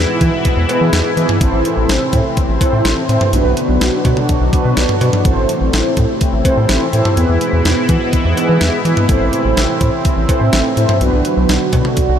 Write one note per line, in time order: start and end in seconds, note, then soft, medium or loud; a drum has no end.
0.00 1.39 G#2 medium
0.00 1.39 B2 medium
0.00 3.29 E3 medium
0.00 0.33 B3 medium
0.00 1.39 B3 medium
0.00 0.33 E4 medium
0.00 3.29 E4 medium
0.00 0.33 G#4 medium
0.00 0.33 B4 loud
0.21 0.30 E3 loud
0.21 kick medium
0.21 closed hi-hat medium
0.45 kick medium
0.45 closed hi-hat medium
0.57 0.66 E2 loud
0.69 1.11 B3 medium
0.69 1.11 E4 medium
0.69 1.11 G#4 medium
0.69 1.11 B4 loud
0.69 closed hi-hat medium
0.69 cowbell medium
0.81 0.90 E3 medium
0.93 1.02 E2 loud
0.93 snare loud
0.93 closed hi-hat medium
1.17 1.26 E3 loud
1.17 1.38 B3 medium
1.17 1.38 E4 medium
1.17 1.38 G#4 medium
1.17 1.38 B4 medium
1.17 closed hi-hat medium
1.29 mid tom loud
1.41 1.50 A1 loud
1.41 3.31 A2 medium
1.41 3.31 C3 medium
1.41 2.25 C4 medium
1.41 3.31 C4 medium
1.41 2.25 E4 medium
1.41 2.25 A4 medium
1.41 2.25 C5 loud
1.41 kick loud
1.41 closed hi-hat medium
1.53 1.62 A1 loud
1.65 closed hi-hat medium
1.77 1.86 A1 loud
1.89 1.98 A1 loud
1.89 snare loud
1.89 closed hi-hat medium
2.13 2.22 A2 loud
2.13 kick medium
2.13 closed hi-hat medium
2.37 kick medium
2.37 closed hi-hat medium
2.49 2.58 A1 loud
2.61 3.03 C4 medium
2.61 3.03 E4 medium
2.61 3.03 A4 medium
2.61 3.03 C5 loud
2.61 kick medium
2.61 closed hi-hat medium
2.61 cowbell medium
2.73 2.82 A2 medium
2.85 2.94 A1 loud
2.85 snare loud
2.85 closed hi-hat medium
3.09 3.18 A2 loud
3.09 3.30 C4 medium
3.09 3.30 E4 medium
3.09 3.30 A4 medium
3.09 3.30 C5 medium
3.09 closed hi-hat medium
3.21 mid tom loud
3.33 3.42 B1 loud
3.33 5.23 B2 medium
3.33 5.23 D3 medium
3.33 5.23 F#3 medium
3.33 4.17 B3 medium
3.33 5.23 D4 medium
3.33 4.17 D4 medium
3.33 4.17 F#4 medium
3.33 5.23 F#4 medium
3.33 4.17 B4 loud
3.33 closed hi-hat medium
3.45 3.54 B1 loud
3.57 closed hi-hat medium
3.69 3.78 B1 loud
3.81 3.90 B1 loud
3.81 snare loud
3.81 closed hi-hat medium
4.05 4.14 B2 loud
4.05 kick medium
4.05 closed hi-hat medium
4.05 cowbell medium
4.17 mid tom loud
4.29 kick medium
4.29 closed hi-hat medium
4.41 4.50 B1 loud
4.53 4.95 B3 medium
4.53 4.95 D4 medium
4.53 4.95 F#4 medium
4.53 4.95 B4 loud
4.53 kick medium
4.53 closed hi-hat medium
4.65 4.74 B2 loud
4.77 4.86 B1 loud
4.77 snare loud
4.77 closed hi-hat medium
4.89 mid tom loud
5.01 5.10 B2 loud
5.01 5.22 B3 medium
5.01 5.22 D4 medium
5.01 5.22 F#4 medium
5.01 5.22 B4 medium
5.01 closed hi-hat medium
5.01 cowbell medium
5.13 mid tom loud
5.25 5.34 A1 loud
5.25 7.15 A2 medium
5.25 7.15 C3 medium
5.25 10.97 E3 medium
5.25 6.09 C4 medium
5.25 7.15 C4 medium
5.25 6.09 E4 medium
5.25 10.97 E4 medium
5.25 6.09 A4 medium
5.25 6.09 C5 loud
5.25 kick loud
5.25 closed hi-hat medium
5.37 5.46 A1 loud
5.49 closed hi-hat medium
5.61 5.70 A1 loud
5.73 5.82 A1 loud
5.73 snare loud
5.73 closed hi-hat medium
5.97 6.06 A2 loud
5.97 kick medium
5.97 closed hi-hat medium
6.21 kick medium
6.21 closed hi-hat medium
6.33 6.42 A1 loud
6.45 6.87 C4 medium
6.45 6.87 E4 medium
6.45 6.87 A4 medium
6.45 6.87 C5 loud
6.45 kick loud
6.45 closed hi-hat medium
6.45 cowbell medium
6.57 6.66 A2 loud
6.69 6.78 A1 loud
6.69 snare loud
6.69 closed hi-hat medium
6.93 7.02 A2 loud
6.93 7.14 C4 medium
6.93 7.14 E4 medium
6.93 7.14 A4 medium
6.93 7.14 C5 medium
6.93 closed hi-hat medium
7.05 mid tom loud
7.17 7.26 E2 loud
7.17 9.07 G#2 medium
7.17 9.07 B2 medium
7.17 8.01 B3 medium
7.17 9.07 B3 medium
7.17 8.01 E4 medium
7.17 8.01 G#4 medium
7.17 8.01 B4 loud
7.17 closed hi-hat medium
7.29 7.38 E2 loud
7.41 closed hi-hat medium
7.53 7.62 E2 loud
7.65 7.74 E2 loud
7.65 snare loud
7.65 closed hi-hat medium
7.89 7.98 E3 loud
7.89 kick medium
7.89 closed hi-hat medium
8.13 kick medium
8.13 closed hi-hat medium
8.25 8.34 E2 loud
8.37 8.79 B3 medium
8.37 8.79 E4 medium
8.37 8.79 G#4 medium
8.37 8.79 B4 loud
8.37 closed hi-hat medium
8.37 cowbell medium
8.49 8.58 E3 medium
8.61 8.70 E2 loud
8.61 snare loud
8.61 closed hi-hat medium
8.85 8.94 E3 loud
8.85 9.06 B3 medium
8.85 9.06 E4 medium
8.85 9.06 G#4 medium
8.85 9.06 B4 medium
8.85 closed hi-hat medium
8.97 mid tom loud
9.09 9.18 A1 loud
9.09 10.99 A2 medium
9.09 10.99 C3 medium
9.09 9.93 C4 medium
9.09 10.99 C4 medium
9.09 9.93 E4 medium
9.09 9.93 A4 medium
9.09 9.93 C5 loud
9.09 kick loud
9.09 closed hi-hat medium
9.21 9.30 A1 loud
9.33 closed hi-hat medium
9.45 9.54 A1 loud
9.57 9.66 A1 loud
9.57 snare loud
9.57 closed hi-hat medium
9.81 9.90 A2 loud
9.81 kick medium
9.81 closed hi-hat medium
10.05 kick medium
10.05 closed hi-hat medium
10.17 10.26 A1 loud
10.29 10.71 C4 medium
10.29 10.71 E4 medium
10.29 10.71 A4 medium
10.29 10.71 C5 loud
10.29 kick medium
10.29 closed hi-hat medium
10.29 cowbell medium
10.41 10.50 A2 loud
10.53 10.62 A1 loud
10.53 snare loud
10.53 closed hi-hat medium
10.77 10.86 A2 loud
10.77 10.98 C4 medium
10.77 10.98 E4 medium
10.77 10.98 A4 medium
10.77 10.98 C5 medium
10.77 closed hi-hat medium
10.89 mid tom loud
11.01 11.10 B1 loud
11.01 12.19 B2 medium
11.01 12.19 D3 medium
11.01 12.19 F#3 medium
11.01 11.85 B3 medium
11.01 11.85 D4 medium
11.01 12.19 D4 medium
11.01 12.19 F#4 medium
11.01 11.85 F#4 medium
11.01 11.85 B4 loud
11.01 closed hi-hat medium
11.13 11.22 B1 loud
11.25 closed hi-hat medium
11.37 11.46 B1 loud
11.49 11.58 B1 loud
11.49 snare loud
11.49 closed hi-hat medium
11.73 11.82 B2 loud
11.73 kick medium
11.73 closed hi-hat medium
11.73 cowbell medium
11.85 mid tom loud
11.97 kick medium
11.97 closed hi-hat medium
12.09 12.18 B1 loud